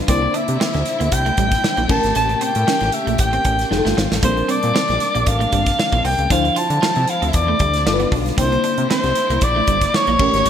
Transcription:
Already playing: D3 G3 D4
0.08 C2 A#2 A#3 C4 D4 E4 C5 D5, kick, closed hi-hat
0.22 muted clean electric guitar stroke
0.34 D4 E5, closed hi-hat
0.48 C3, closed hi-hat
0.60 C4, snare
0.74 D2, muted clean electric guitar stroke, snare, closed hi-hat
0.85 snare, closed hi-hat
1.00 D2 A#3, closed hi-hat
1.12 C2 G5, muted clean electric guitar stroke, kick, closed hi-hat
1.26 A3, closed hi-hat
1.37 A1 G3, kick, closed hi-hat
1.51 kick, snare, closed hi-hat
1.64 muted clean electric guitar stroke, snare
1.77 A#1 A#3, closed hi-hat
1.88 A1 C#3 A3 C#4 G4 A#4 A5, kick, crash
2.03 G#1, snare, closed hi-hat
2.15 A1 A3 A5, closed hi-hat
2.29 muted clean electric guitar stroke, closed hi-hat
2.41 C4 G5, closed hi-hat
2.55 A2, closed hi-hat
2.67 C#4, snare
2.80 A1, muted clean electric guitar stroke, snare, closed hi-hat
2.92 E5, closed hi-hat
3.07 A#1 A3, closed hi-hat
3.18 A1 G5, muted clean electric guitar stroke, kick, closed hi-hat
3.33 C4, closed hi-hat
3.45 A1 C#4, kick, closed hi-hat
3.59 snare, closed hi-hat
3.71 F1 D#3 G3 D#4 F4 G#4, muted clean electric guitar stroke, snare
3.78 A4
3.85 G1 A3, snare
3.97 G#1 C4, snare
4.11 A1, snare
4.22 A#1 C3 G3 A#3 C4 D4 A#4 C5, kick, closed hi-hat
4.37 muted clean electric guitar stroke, closed hi-hat
4.48 C4 D5, closed hi-hat
4.63 A#2, closed hi-hat
4.75 C4, snare
4.88 A#1, muted clean electric guitar stroke, snare, closed hi-hat
5.00 snare, closed hi-hat
5.15 A#1 A#3, closed hi-hat
5.26 A1 F5, muted clean electric guitar stroke, kick, closed hi-hat
5.40 A3, closed hi-hat
5.52 G1 G3, kick, closed hi-hat
5.66 kick, snare, closed hi-hat
5.79 muted clean electric guitar stroke, snare
5.92 A#1 A#3, kick, closed hi-hat
6.05 C2 C4 G5, open hi-hat
6.19 C#2, closed hi-hat
6.30 D2 D3 F3 C4 D4 E4 C5 F5, kick, closed hi-hat
6.44 muted clean electric guitar stroke, closed hi-hat
6.56 F4 A5, closed hi-hat
6.70 D3, closed hi-hat
6.82 F4, snare
6.96 C3, muted clean electric guitar stroke, closed hi-hat
7.08 F5, closed hi-hat
7.22 D2 C4, closed hi-hat
7.28 E5
7.33 E2 D5, muted clean electric guitar stroke, kick, closed hi-hat
7.48 A3
7.59 D2 G3, kick, closed hi-hat
7.74 snare, closed hi-hat
7.86 G1 G3 B3 D4 F4 A4, muted clean electric guitar stroke, snare
7.93 B4
8.00 B3, closed hi-hat
8.12 B1 D4, kick, open hi-hat
8.26 snare, closed hi-hat
8.37 C2 A#3 C4 D4 E4 C5, kick, closed hi-hat
8.52 muted clean electric guitar stroke, closed hi-hat
8.64 D4, closed hi-hat
8.78 C3, closed hi-hat
8.90 C4 C5, snare
9.03 C2, muted clean electric guitar stroke, snare, closed hi-hat
9.15 snare, closed hi-hat
9.30 C2 A#3, closed hi-hat
9.41 A#1 D5, muted clean electric guitar stroke, kick, closed hi-hat
9.56 A3
9.67 G1 G3, kick, closed hi-hat
9.81 kick, snare, closed hi-hat
9.94 C#5, muted clean electric guitar stroke, snare
10.07 A#1 A#3, closed hi-hat
10.18 A1 A#2 C#3 A3 C#4 G4 A#4, kick, crash
10.33 G#1, snare, closed hi-hat
10.45 A1 A3, closed hi-hat

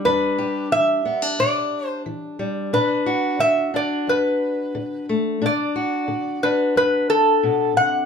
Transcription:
Already playing: G3
0.05 E2 D4 B4
0.38 G4
0.72 E3 E5
1.05 B3
1.22 D4
1.39 B2 D5
1.87 C5
2.06 E3
2.39 G3
2.73 B2 D4 B4
3.06 F#4
3.39 D3 E5
3.74 D4 D5
4.07 F#2 B4
4.75 D3
5.09 A3
5.42 B2 D4
5.46 D5
5.76 F#4
6.08 D3
6.43 D4 B4
6.76 F#2 B4
7.10 A4
7.43 B2
7.76 C3 F#5

